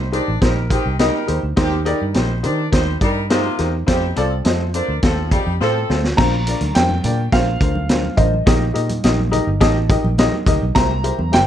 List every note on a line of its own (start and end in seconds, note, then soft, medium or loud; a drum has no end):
0.00 0.20 C2 medium
0.12 0.37 D4 medium
0.12 0.28 D#4 medium
0.12 0.28 G4 medium
0.12 0.28 A#4 medium
0.12 0.36 A#4 medium
0.12 0.28 C5 medium
0.12 0.36 D5 medium
0.12 closed hi-hat medium
0.28 0.40 A1 medium
0.41 0.77 A#1 medium
0.41 0.64 G3 medium
0.41 0.64 D#4 medium
0.41 0.57 D#4 medium
0.41 0.57 G4 medium
0.41 0.65 A#4 medium
0.41 0.57 A#4 medium
0.41 0.57 C5 medium
0.41 kick medium
0.41 snare loud
0.41 closed hi-hat medium
0.70 0.94 D#3 loud
0.70 0.94 C4 loud
0.70 0.85 D#4 medium
0.70 0.86 G4 medium
0.70 0.94 G4 loud
0.70 0.86 A#4 medium
0.70 0.86 C5 medium
0.70 kick medium
0.70 closed hi-hat medium
0.86 1.09 C2 medium
0.99 1.40 G3 medium
0.99 1.14 D#4 loud
0.99 1.40 D#4 loud
0.99 1.15 G4 loud
0.99 1.15 A#4 loud
0.99 1.41 A#4 loud
0.99 1.15 D#5 loud
0.99 snare loud
0.99 closed hi-hat medium
1.28 1.40 D#2 medium
1.28 1.43 D#4 medium
1.28 1.43 G4 medium
1.28 1.43 A#4 medium
1.28 1.44 C5 medium
1.28 closed hi-hat medium
1.43 1.55 D2 medium
1.56 1.92 D#2 medium
1.56 2.40 D#3 medium
1.56 1.81 D#3 loud
1.56 1.81 C4 loud
1.56 1.72 D#4 loud
1.56 1.72 G4 medium
1.56 1.81 G4 loud
1.56 1.72 A#4 medium
1.56 1.72 C5 loud
1.56 kick medium
1.56 snare loud
1.56 closed hi-hat medium
1.85 2.10 G3 medium
1.85 2.01 D#4 loud
1.85 2.10 D#4 medium
1.85 2.01 G4 loud
1.85 2.01 A#4 loud
1.85 2.10 A#4 medium
1.85 2.01 D5 loud
1.85 closed hi-hat medium
2.02 2.13 G2 medium
2.14 2.47 A#1 medium
2.14 2.38 G3 medium
2.14 2.29 D#4 medium
2.14 2.38 D#4 medium
2.14 2.30 G4 medium
2.14 2.30 A#4 medium
2.14 2.30 C5 medium
2.14 2.38 C5 medium
2.14 snare loud
2.14 closed hi-hat medium
2.43 2.68 D#3 medium
2.43 2.67 D4 medium
2.43 2.58 D#4 medium
2.43 2.59 G4 medium
2.43 2.59 A#4 medium
2.43 2.67 A#4 medium
2.43 2.59 C5 medium
2.43 2.67 D5 loud
2.43 closed hi-hat medium
2.72 2.96 D#2 medium
2.72 2.96 G3 medium
2.72 2.87 D#4 medium
2.72 2.96 D#4 medium
2.72 2.87 G4 medium
2.72 2.87 A#4 medium
2.72 2.88 C5 medium
2.72 2.96 C5 loud
2.72 kick medium
2.72 snare medium
2.72 closed hi-hat medium
3.01 3.48 G2 medium
3.01 3.25 G3 loud
3.01 3.16 D#4 medium
3.01 3.25 D#4 loud
3.01 3.16 G4 medium
3.01 3.25 A#4 loud
3.01 3.17 A#4 medium
3.01 3.17 D5 medium
3.01 kick medium
3.01 closed hi-hat medium
3.30 3.71 C3 loud
3.30 3.71 A#3 loud
3.30 3.45 D#4 loud
3.30 3.71 F4 loud
3.30 3.45 G4 medium
3.30 3.45 A#4 medium
3.30 3.46 C5 loud
3.30 snare medium
3.30 closed hi-hat medium
3.59 3.83 E2 medium
3.59 3.74 D#4 medium
3.59 3.74 G4 medium
3.59 3.74 A#4 medium
3.59 3.74 C5 medium
3.59 snare soft
3.59 closed hi-hat medium
3.87 4.11 F2 medium
3.87 4.11 G3 loud
3.87 4.02 C4 loud
3.87 4.11 D#4 medium
3.87 4.02 F4 loud
3.87 4.11 G4 loud
3.87 4.02 A4 medium
3.87 4.03 C5 loud
3.87 kick medium
3.87 snare loud
3.87 closed hi-hat medium
4.16 4.40 C2 medium
4.16 4.40 F3 medium
4.16 4.31 C4 loud
4.16 4.40 C4 medium
4.16 4.32 F4 loud
4.16 4.32 A4 loud
4.16 4.40 A4 medium
4.16 4.32 D5 loud
4.16 closed hi-hat medium
4.44 4.80 F2 medium
4.44 4.69 A3 medium
4.44 4.60 C4 medium
4.44 4.60 F4 medium
4.44 4.69 F4 medium
4.44 4.60 A4 medium
4.44 4.69 C5 medium
4.44 4.61 D#5 medium
4.44 snare loud
4.44 closed hi-hat medium
4.74 4.89 C4 medium
4.74 4.97 D4 medium
4.74 4.89 F4 medium
4.74 4.89 A4 medium
4.74 4.97 A#4 medium
4.74 4.90 C5 medium
4.74 4.97 D5 medium
4.74 closed hi-hat medium
4.88 5.00 D2 medium
5.02 5.38 D#2 medium
5.02 5.26 F3 medium
5.02 5.26 C4 medium
5.02 5.18 C4 medium
5.02 5.18 F4 medium
5.02 5.26 A4 medium
5.02 5.18 A4 medium
5.02 5.18 C5 medium
5.02 kick medium
5.02 snare loud
5.02 closed hi-hat medium
5.31 5.54 G3 medium
5.31 5.47 C4 medium
5.31 5.54 D#4 medium
5.31 5.47 F4 medium
5.31 5.54 G4 medium
5.31 5.47 A4 medium
5.31 5.47 D5 medium
5.31 kick medium
5.31 closed hi-hat medium
5.47 5.58 F2 medium
5.60 5.84 A2 medium
5.60 6.01 F3 medium
5.60 5.75 C4 loud
5.60 6.01 C4 medium
5.60 5.76 F4 loud
5.60 6.01 A4 loud
5.60 5.76 A4 loud
5.60 5.76 C5 loud
5.60 snare soft
5.89 6.13 D2 medium
5.89 6.04 C4 medium
5.89 6.04 F4 medium
5.89 6.04 A4 medium
5.89 6.05 C5 medium
5.89 snare medium
6.04 snare medium
6.17 6.53 A#1 loud
6.17 7.01 A#2 medium
6.17 6.33 D4 loud
6.17 6.33 F4 medium
6.17 6.33 A#4 medium
6.17 6.34 C5 loud
6.17 6.71 A#5 loud
6.17 kick loud
6.17 snare loud
6.17 crash medium
6.17 low conga medium
6.47 6.62 D4 medium
6.47 6.62 F4 medium
6.47 6.62 A#4 medium
6.47 6.62 D5 medium
6.47 closed hi-hat medium
6.61 6.73 D2 medium
6.61 closed hi-hat medium
6.61 high conga medium
6.75 6.99 F2 medium
6.75 6.90 D4 medium
6.75 6.90 F4 medium
6.75 6.91 A#4 medium
6.75 6.91 C5 medium
6.75 7.34 G5 loud
6.75 snare loud
6.75 closed hi-hat medium
6.89 high conga medium
7.04 7.27 A#2 medium
7.04 7.19 D4 medium
7.04 7.19 F4 medium
7.04 7.19 A#4 medium
7.04 7.19 D5 medium
7.04 closed hi-hat medium
7.04 low conga medium
7.32 7.56 A#1 medium
7.32 7.47 D4 medium
7.32 7.47 F4 medium
7.32 7.48 A#4 medium
7.32 7.48 C5 loud
7.32 8.21 F5 medium
7.32 kick loud
7.32 snare loud
7.32 closed hi-hat medium
7.61 8.07 D2 medium
7.61 7.76 D4 medium
7.61 7.76 F4 medium
7.61 7.76 A#4 medium
7.61 7.77 C5 medium
7.61 kick medium
7.61 closed hi-hat medium
7.75 high conga medium
7.89 8.04 D4 medium
7.89 8.05 F4 medium
7.89 8.05 A#4 medium
7.89 8.05 C5 medium
7.89 snare loud
7.89 closed hi-hat medium
7.89 muted conga soft
8.03 high conga medium
8.17 8.41 A1 medium
8.17 8.33 D4 medium
8.17 8.33 F4 medium
8.17 8.34 A#4 medium
8.17 8.33 C5 medium
8.17 10.42 D#5 medium
8.17 kick medium
8.17 closed hi-hat medium
8.17 muted conga soft
8.17 low conga medium
8.34 high conga soft
8.46 8.70 A#1 loud
8.46 9.29 A#2 medium
8.46 8.61 D#4 loud
8.46 8.62 G4 medium
8.46 8.62 A#4 medium
8.46 8.62 D#5 loud
8.46 kick loud
8.46 snare loud
8.46 closed hi-hat medium
8.46 muted conga soft
8.46 low conga medium
8.74 8.99 A#2 medium
8.74 8.89 D#4 medium
8.74 8.89 G4 medium
8.74 8.90 A#4 medium
8.74 8.90 D#5 medium
8.74 closed hi-hat medium
8.74 muted conga soft
8.89 closed hi-hat medium
8.89 high conga medium
9.04 9.39 A#1 loud
9.04 9.19 D#4 medium
9.04 9.19 G4 medium
9.04 9.19 A#4 medium
9.04 9.19 D#5 medium
9.04 snare loud
9.04 closed hi-hat medium
9.18 high conga medium
9.31 9.47 D#4 medium
9.31 9.47 G4 medium
9.31 9.47 A#4 medium
9.31 9.47 D#5 medium
9.31 9.59 A#5 medium
9.31 closed hi-hat medium
9.31 muted conga soft
9.31 low conga medium
9.47 9.59 G1 medium
9.60 9.96 A1 medium
9.60 9.76 D#4 loud
9.60 9.76 G4 loud
9.60 9.76 A#4 loud
9.60 9.76 D#5 loud
9.60 9.88 A5 medium
9.60 kick medium
9.60 snare loud
9.60 closed hi-hat medium
9.60 muted conga soft
9.89 10.04 D#4 medium
9.89 10.05 G4 medium
9.89 10.05 A#4 medium
9.89 10.05 D#5 loud
9.89 10.16 G5 medium
9.89 kick loud
9.89 closed hi-hat medium
10.04 10.27 A#1 medium
10.04 high conga medium
10.18 10.33 D#4 medium
10.18 10.33 G4 medium
10.18 10.33 A#4 medium
10.18 10.34 D#5 loud
10.18 10.45 F5 medium
10.18 snare loud
10.18 closed hi-hat medium
10.18 muted conga soft
10.32 high conga medium
10.46 10.58 D2 loud
10.46 10.62 D#4 medium
10.46 10.62 G4 medium
10.46 10.62 A#4 medium
10.46 10.62 D#5 loud
10.46 kick medium
10.46 snare soft
10.46 closed hi-hat medium
10.46 muted conga soft
10.46 low conga medium
10.62 10.73 B1 medium
10.62 high conga soft
10.75 11.10 C2 loud
10.75 11.47 C3 medium
10.75 10.90 E4 medium
10.75 10.91 G4 medium
10.75 10.91 A#4 medium
10.75 10.91 C5 loud
10.75 11.34 A#5 loud
10.75 kick loud
10.75 snare loud
10.75 closed hi-hat medium
10.75 muted conga soft
10.75 low conga medium
11.03 11.19 E4 medium
11.03 11.19 G4 medium
11.03 11.19 A#4 medium
11.03 11.19 C5 medium
11.03 closed hi-hat medium
11.03 muted conga soft
11.19 11.36 E2 medium
11.19 high conga medium
11.32 11.47 G1 medium
11.32 11.47 E4 medium
11.32 11.47 G4 medium
11.32 11.47 A#4 medium
11.32 11.47 C5 medium
11.32 11.47 G5 loud
11.32 snare loud
11.32 closed hi-hat medium
11.32 muted conga soft